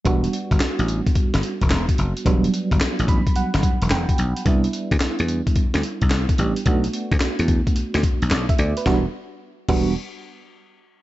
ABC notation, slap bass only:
X:1
M:4/4
L:1/16
Q:"Swing 16ths" 1/4=109
K:Em
V:1 name="Slap bass" clef=bass
E,,,2 z G,,, z A,,,2 z2 G,,, z E,,, E,,, z F,,, z | E,,,2 z G,,, z A,,,2 z2 G,,, z E,,, E,,, z B,,, z | C,,2 z D,, z E,,2 z2 D,, z C,, C,, z A,,, z | B,,,2 z D,, z E,,2 z2 D,, z B,,, B,,, z D,, z |
E,,, z4 z E,,,2 z8 |]